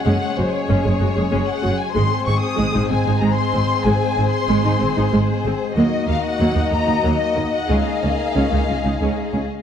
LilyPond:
<<
  \new Staff \with { instrumentName = "Violin section" } { \time 12/8 \key aes \mixolydian \tempo 4. = 126 ges''4 c''8 des''2. ges''4 aes''8 | c'''4 des'''8 ees'''4. aes''4 bes''8 c'''4. | aes''4. c'''2~ c'''8 r2 | ees''4 f''8 ges''4. bes''4. ees''4 ges''8 |
f''1~ f''4. r8 | }
  \new Staff \with { instrumentName = "Violin section" } { \time 12/8 \key aes \mixolydian << { des''1. | c''1.~ | c''1. | ees''1.~ |
ees''1~ ees''4. r8 | } \\ { aes'1. | aes'1.~ | aes'1. | ges'1. |
aes'1~ aes'4. r8 | } >> }
  \new Staff \with { instrumentName = "French horn section" } { \time 12/8 \key aes \mixolydian << { des'1. | c'1.~ | c'1. | ees'1.~ |
ees'1~ ees'4. r8 | } \\ { aes1. | aes1.~ | aes1. | bes1.~ |
bes2. aes2~ aes8 r8 | } >> }
  \new Staff \with { instrumentName = "Viola section" } { \time 12/8 \key aes \mixolydian <aes des'>8 r8 <aes ges'>8 r8 <aes des'>8 <aes aes'>8 <aes ges'>8 <aes aes'>8 <aes des'>8 r8 <aes ges'>8 r8 | aes8 r8 <aes c'>8 r8 aes8 <aes ees'>8 <aes c'>8 <aes ees'>8 aes8 r8 <aes c'>8 r8 | aes8 r8 <aes c'>8 r8 aes8 <aes ees'>8 <aes c'>8 <aes ees'>8 aes8 r8 <aes c'>8 r8 | <ges bes>8 r8 bes8 r8 <ges bes>8 <bes ees'>8 bes8 <bes ees'>8 <ges bes>8 r8 bes8 r8 |
<aes des'>8 r8 des'8 r8 <aes des'>8 <des' ees'>8 des'8 <des' ees'>8 <aes des'>8 r8 des'8 r8 | }
  \new Staff \with { instrumentName = "Cello section" } { \clef bass \time 12/8 \key aes \mixolydian ges,8 r8 ges,8 r8 ges,8 ges,8 ges,8 ges,8 ges,8 r8 ges,8 r8 | aes,8 r8 aes,8 r8 aes,8 aes,8 aes,8 aes,8 aes,8 r8 aes,8 r8 | aes,8 r8 aes,8 r8 aes,8 aes,8 aes,8 aes,8 aes,8 r8 aes,8 r8 | ees,8 r8 ees,8 r8 ees,8 ees,8 ees,8 ees,8 ees,8 r8 ees,8 r8 |
des,8 r8 des,8 r8 des,8 des,8 des,8 des,8 des,8 r8 des,8 r8 | }
  \new Staff \with { instrumentName = "Double bass section" } { \clef bass \time 12/8 \key aes \mixolydian ges,,8 r8 ges,,8 r8 ges,,8 ges,,8 ges,,8 ges,,8 ges,,8 r8 ges,,8 r8 | aes,,8 r8 aes,,8 r8 aes,,8 aes,,8 aes,,8 aes,,8 aes,,8 r8 aes,,8 r8 | aes,,8 r8 aes,,8 r8 aes,,8 aes,,8 aes,,8 aes,,8 aes,,8 r8 aes,,8 r8 | ees,8 r8 ees,8 r8 ees,8 ees,8 ees,8 ees,8 ees,8 r8 ees,8 r8 |
des,8 r8 des,8 r8 des,8 des,8 des,8 des,8 des,8 r8 des,8 r8 | }
>>